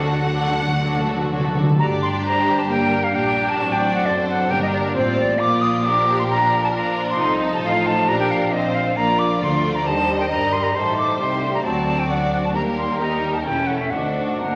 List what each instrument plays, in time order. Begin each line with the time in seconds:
Already playing: double bass section D2, cello section D3, violin section F#5
0.00 timpani D3, viola section A3 F#4, violin section F#4 A4
0.11 timpani D3, viola section F#3 D4, violin section F#4 A4
0.19 timpani D3
0.23 viola section A3 F#4, violin section F#4 A4
0.35 timpani D3, viola section F#3 D4, violin section F#4 A4
0.43 timpani D3, viola section A3
0.47 viola section F#4, violin section F#4 A4
0.58 timpani D3, viola section F#3 D4, violin section F#4 A4
0.67 timpani D3, viola section A3 F#4
0.71 timpani D3, violin section F#4 A4
0.82 timpani D3, viola section F#3 D4, violin section F#4 A4
0.91 timpani D3, viola section A3 F#4, violin section F#4 A4
0.98 timpani D3
1.07 timpani D3, viola section F#3 D4, violin section F#4 A4
1.15 timpani D3, viola section F#4
1.19 viola section A3, violin section F#4 A4
1.23 timpani D3
1.31 timpani D3, viola section F#3 D4, violin section F#4 A4
1.39 timpani D3, violin section F#4
1.43 viola section A3 F#4, violin section A4
1.47 timpani D3
1.54 timpani D3, viola section F#3 D4, violin section F#4 A4
1.63 timpani D3, violin section F#4 A4
1.68 timpani D3, viola section A3 F#4
1.77 double bass section G1, cello section G2, french horn section G3 D4, viola section D4, violin section G4 D5, flute A#5
2.02 flute C6
2.24 violin section C5, flute A#5
2.59 flute A5
2.68 viola section A#3, violin section A#4, flute G5
3.04 flute F5
3.13 double bass section A#1, cello section A#2, viola section D4, violin section G4 A#4, flute G5
3.49 flute A5
3.60 double bass section A1, cello section A2, french horn section F#3 C4, violin section F#4 D5
3.72 flute G5
3.95 flute F#5
4.04 double bass section F#1, cello section F#2, violin section A4 C5, flute D5
4.29 flute F#5
4.49 double bass section G1, timpani G2, cello section G2, french horn section G3 A#3, viola section D4, violin section G4 A#4, flute G5
4.62 flute D#5
4.73 flute D5
4.94 double bass section A1, cello section A2, viola section C4, violin section F4 D5, flute C5
5.18 flute D5
5.38 double bass section A#1, cello section A#2, french horn section F3, viola section A#3, violin section F4 D5, flute D6
5.61 flute D#6
5.84 viola section D4, violin section G4 A#4, flute D6
6.19 flute C6
6.29 viola section D4, violin section A#4, flute A#5
6.64 flute A5
6.74 viola section D4, violin section F4, flute A#5
7.08 flute C6
7.18 double bass section C2, cello section C3, violin section D#4 A4, french horn section D#4, viola section D#4
7.54 flute A5
7.63 double bass section A1, cello section A2, viola section F4, flute F5
7.87 flute A5
8.07 double bass section A#1, cello section A#2, french horn section D4, viola section D4, violin section G4 A#4, flute A#5
8.20 flute G5
8.31 flute F5
8.51 viola section C4, violin section F4 C5, flute D#5
8.74 flute F5
8.95 double bass section A#1, cello section A#2, french horn section F3 D4, viola section A#3, violin section F4 D5, flute A#5
9.19 flute D6
9.41 double bass section D2, cello section D3, viola section A3, flute C6
9.75 flute A#5
9.85 double bass section D#2, cello section D#3, viola section G3, french horn section G3 D4, violin section C5 D#5, flute A5
10.20 flute G5
10.29 double bass section G1, cello section G2, french horn section G3 D4, violin section A#4, flute A#5
10.53 flute C6
10.63 flute A#5
10.73 double bass section A1, cello section A2, french horn section A3 D#4, violin section A4 C5, flute C6
10.97 flute D6
11.19 cello section C2, double bass section C2, french horn section A3 D#4, violin section G4, flute C6
11.42 french horn section D4
11.54 flute A#5
11.63 cello section D2, double bass section D2, french horn section F#3 C4, viola section C4, violin section F#4 D5, flute A5
11.99 flute G5
12.09 french horn section F#3 C4, viola section D4, flute F#5
12.33 flute F#5
12.45 flute A5
12.53 double bass section D#2, cello section D#2, french horn section G3 A#3, viola section A#3, violin section G4 A#4, flute A#5
12.77 flute C6
12.99 french horn section G3 A#3, viola section D#4, violin section A#4, flute A#5
13.23 french horn section A#3
13.33 flute A5
13.45 double bass section E1, cello section E2, french horn section A3 C#4, viola section C#4, violin section E4 A4, flute G5
13.67 french horn section A3, flute F#5
13.79 flute E5
13.90 cello section D2, double bass section D2, french horn section C4 D#4, viola section D4, violin section F#4 A4, flute F#5
14.27 flute F#5
14.38 double bass section G1, cello section G2, viola section A#3, french horn section A#3 D4, violin section D4 A#4, flute F#5